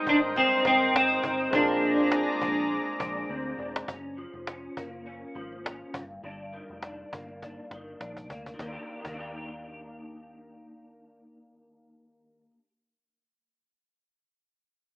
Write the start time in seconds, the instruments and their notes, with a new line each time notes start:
Already playing: clean electric guitar G#2 G3 C4, upright piano G#3 C4 D#4 G4 C5, analog synth pad A#4 C5 D#5 G5
0.06 picked electric bass G#1, clean electric guitar D4 D#4, cajon bass
0.36 clean electric guitar G3 C4, cajon bass
0.52 cajon slap
0.64 picked electric bass G#1, clean electric guitar C4 D#4, cajon bass
0.93 picked electric bass G#1, clean electric guitar C4, cajon slap
1.23 picked electric bass G1, clean electric guitar D#4, cajon bass
1.51 picked electric bass A#1, clean electric guitar A#2 D4, upright piano G#3 C4 D4 F4, analog synth pad G#4 D5 A#5, cajon bass
1.55 clean electric guitar D4, upright piano A#4
1.82 clean electric guitar A#3, cajon slap
1.98 clean electric guitar C4
2.11 clean electric guitar G#3, cajon slap
2.28 cajon slap
2.41 picked electric bass A#1, clean electric guitar C4, cajon bass
2.57 clean electric guitar D4, cajon slap
2.71 clean electric guitar G#3, cajon slap
2.99 picked electric bass A#1, clean electric guitar D4, cajon bass
3.16 cajon slap
3.29 picked electric bass D2, clean electric guitar C4, cajon slap
3.47 cajon slap
3.58 picked electric bass D#1, clean electric guitar D4, cajon slap
3.76 cajon slap
3.88 picked electric bass F#1, clean electric guitar C#4, cajon bass
4.17 clean electric guitar F3, cajon slap
4.34 picked electric bass F1, cajon slap
4.47 clean electric guitar C#4, cajon slap
4.64 cajon slap
4.77 picked electric bass F#1, clean electric guitar A#3, cajon bass
4.93 cajon slap
5.06 clean electric guitar C#4, cajon slap
5.35 picked electric bass G#1, clean electric guitar F3, cajon slap
5.52 cajon slap
5.64 clean electric guitar C#4, cajon slap
5.82 cajon slap
5.94 picked electric bass G1, clean electric guitar G2, cajon bass
6.10 cajon slap
6.24 picked electric bass G1, clean electric guitar G2 D4, cajon slap
6.53 clean electric guitar D#3, cajon slap
6.69 picked electric bass F1, cajon slap
6.83 clean electric guitar D4, cajon slap
7.00 cajon slap
7.12 picked electric bass G1, clean electric guitar A#3, cajon bass
7.28 cajon slap
7.42 clean electric guitar D4, cajon bass, cajon slap
7.71 picked electric bass G1, clean electric guitar D#3, cajon slap
7.88 cajon slap
8.00 picked electric bass A#1, clean electric guitar D4, cajon slap
8.17 cajon bass
8.30 picked electric bass D2, clean electric guitar A#3, cajon bass
8.46 cajon bass
8.54 clean electric guitar D#3
8.59 picked electric bass D#2, clean electric guitar A#3, cajon bass, cajon slap
8.67 clean electric guitar D4
8.72 clean electric guitar G4
9.00 clean electric guitar D#3
9.05 picked electric bass D#2, clean electric guitar A#3, cajon bass
9.13 clean electric guitar D4
9.18 clean electric guitar G4